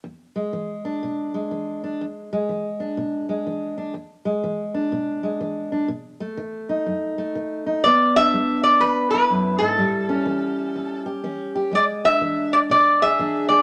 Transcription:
0.04 steel-string acoustic guitar E2
0.36 steel-string acoustic guitar G#3
0.53 steel-string acoustic guitar E3
0.85 steel-string acoustic guitar D4
1.03 steel-string acoustic guitar B2
1.34 steel-string acoustic guitar G#3
1.51 steel-string acoustic guitar E3
1.84 steel-string acoustic guitar D4
2.01 steel-string acoustic guitar E2
2.33 steel-string acoustic guitar G#3
2.49 steel-string acoustic guitar E3
2.80 steel-string acoustic guitar D4
2.97 steel-string acoustic guitar B2
3.29 steel-string acoustic guitar G#3
3.47 steel-string acoustic guitar E3
3.78 steel-string acoustic guitar D4
3.94 steel-string acoustic guitar E2
4.25 steel-string acoustic guitar G#3
4.44 steel-string acoustic guitar E3
4.74 steel-string acoustic guitar D4
4.92 steel-string acoustic guitar B2
5.23 steel-string acoustic guitar G#3
5.41 steel-string acoustic guitar E3
5.72 steel-string acoustic guitar D4
5.88 steel-string acoustic guitar B2
6.20 steel-string acoustic guitar A3
6.37 steel-string acoustic guitar D#3
6.69 steel-string acoustic guitar D#4
6.86 steel-string acoustic guitar F#2
7.18 steel-string acoustic guitar A3
7.35 steel-string acoustic guitar D#3
7.66 steel-string acoustic guitar D#4
7.84 steel-string acoustic guitar E2 B3, resonator guitar played with a steel bar D5
8.16 steel-string acoustic guitar D4, resonator guitar played with a steel bar E5
8.34 steel-string acoustic guitar G#3
8.63 resonator guitar played with a steel bar D5
8.80 steel-string acoustic guitar E2, resonator guitar played with a steel bar B4
9.11 steel-string acoustic guitar E4, resonator guitar played with a steel bar B4
9.30 steel-string acoustic guitar F#2
9.58 steel-string acoustic guitar G#2, resonator guitar played with a steel bar A4
9.78 steel-string acoustic guitar A2 G3
10.09 steel-string acoustic guitar C#4
10.26 steel-string acoustic guitar E3
10.76 steel-string acoustic guitar E2
11.06 steel-string acoustic guitar G4
11.24 steel-string acoustic guitar E3 C#4
11.55 steel-string acoustic guitar G4
11.71 steel-string acoustic guitar E2 G#3, resonator guitar played with a steel bar D5
12.04 steel-string acoustic guitar D4, resonator guitar played with a steel bar E5
12.21 steel-string acoustic guitar E3
12.53 resonator guitar played with a steel bar D5
12.70 steel-string acoustic guitar B2, resonator guitar played with a steel bar D5
13.02 steel-string acoustic guitar G#4, resonator guitar played with a steel bar E5
13.19 steel-string acoustic guitar E3 D4
13.49 steel-string acoustic guitar G#4, resonator guitar played with a steel bar D5

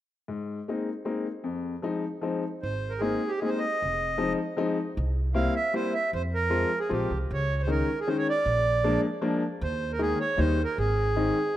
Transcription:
0.28 upright piano G#2
0.68 upright piano G#3 A#3 C4 D#4
1.05 upright piano G#3 A#3 C4 D#4
1.44 upright piano F2
1.82 upright piano F3 G#3 C4 D#4
2.21 upright piano F3 G#3 C4 D#4
2.62 upright bass G#1, accordion C5
2.90 accordion A#4
2.99 upright piano G#3 A#3 C4 D#4, accordion G#4
3.28 accordion G4
3.38 accordion G#4
3.42 upright piano G#3 A#3 C4 D#4
3.48 accordion C5
3.58 accordion D#5
3.82 upright bass F1
4.18 upright piano F3 G#3 C4 D#4
4.57 upright piano F3 G#3 C4 D#4
4.97 upright bass C2
5.34 upright piano G3 A#3 C4 E4, accordion F5
5.56 accordion E5
5.73 upright piano G3 A#3 C4 E4, accordion C5
5.94 accordion E5
6.13 upright bass F2, accordion C5
6.34 accordion A#4
6.50 upright piano F3 G#3 C4 F4
6.79 accordion G#4
6.89 upright bass A#1, upright piano F3 G#3 C4 F4, accordion G4
7.11 upright bass C2
7.31 upright bass C#2, accordion C#5
7.62 accordion C5
7.67 upright piano D#3 G#3 C#4 D#4, accordion A#4
8.00 accordion G#4
8.07 upright piano D#3 G#3 C#4 D#4, accordion C5
8.18 accordion C#5
8.29 accordion D5
8.46 upright bass A#1
8.84 upright piano F3 G#3 A#3 D4
9.21 upright piano F3 G#3 A#3 D4
9.61 upright bass D#2, accordion C5
9.92 accordion A#4
9.99 upright piano D#3 G#3 A#3 D#4, accordion G#4
10.20 accordion C#5
10.37 upright bass D#2, upright piano D#3 G3 A#3 D#4, accordion C5
10.64 accordion A#4
10.78 upright bass G#1, accordion G#4
11.16 upright piano D#3 G#3 C4 D#4

